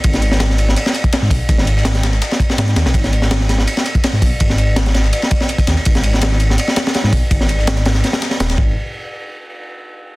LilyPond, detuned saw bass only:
\new Staff \with { instrumentName = "Detuned saw bass" } { \clef bass \time 4/4 \key gis \minor \tempo 4 = 165 gis,,2 r4 r16 gis,16 b,,16 r16 | gis,,2 r4 gis,8 dis,16 b,,16 | gis,,2 r4 r16 gis,16 b,,16 r16 | gis,,2 r4. dis,16 r16 |
gis,,2 r4 r16 gis,16 b,,16 r16 | gis,,2 r4 dis,,8 gis,,8 | r1 | }